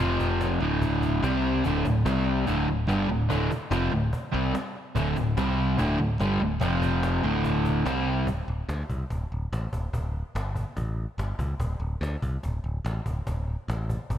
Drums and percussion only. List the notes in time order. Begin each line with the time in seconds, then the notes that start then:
0.20 cajon bass
0.41 cajon slap
0.82 cajon bass
1.02 cajon bass
1.24 cajon slap
1.64 cajon bass
1.76 cajon slap
1.85 cajon bass
2.06 cajon slap
2.47 cajon bass
2.89 cajon slap
3.30 cajon bass
3.51 cajon bass
3.72 cajon slap
4.13 cajon bass
4.55 cajon slap
4.96 cajon bass
5.16 cajon bass
5.38 cajon slap
5.78 cajon bass
6.20 cajon slap
6.61 cajon bass
6.82 cajon bass
7.03 cajon slap
7.44 cajon bass
7.65 cajon bass
7.86 cajon slap
8.27 cajon bass
8.69 cajon slap
8.89 cajon bass
9.10 cajon bass
9.53 cajon slap
9.73 cajon bass
9.94 cajon bass
10.36 cajon slap
10.56 cajon bass
10.76 cajon bass
11.19 cajon slap
11.39 cajon bass
11.60 cajon bass
12.03 cajon slap
12.22 cajon bass
12.43 cajon bass
12.86 cajon slap
13.06 cajon bass
13.27 cajon bass
13.70 cajon slap
13.89 cajon bass
14.10 cajon bass